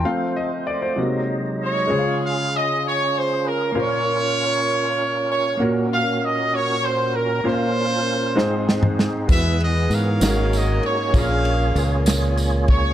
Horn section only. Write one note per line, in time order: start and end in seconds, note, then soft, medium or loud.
1.62 2.49 F4 medium
1.62 2.49 G#4 medium
1.62 2.19 C#5 loud
2.24 2.53 F5 loud
2.56 2.85 D#5 loud
2.87 3.14 C#5 loud
3.17 3.46 C5 loud
3.46 3.76 A#4 medium
3.77 5.26 F4 medium
3.77 5.26 A#4 medium
3.77 5.29 C#5 loud
5.30 5.62 C#5 loud
5.92 6.20 F5 loud
6.23 6.53 D#5 medium
6.54 6.84 C#5 loud
6.85 7.15 C5 medium
7.14 7.45 A#4 medium
7.46 8.95 F4 medium
7.46 8.96 C5 loud
9.30 10.19 G#4 medium
9.30 10.18 B4 medium
9.30 9.58 E5 loud
9.62 9.92 D#5 loud
9.93 10.80 A#4 medium
9.93 10.81 C#5 medium
9.93 10.53 F5 loud
10.55 10.84 D#5 medium
10.86 11.15 C#5 loud
11.17 12.04 G#4 medium
11.17 12.04 C#5 medium
11.17 12.08 F5 loud
12.70 12.94 C#5 loud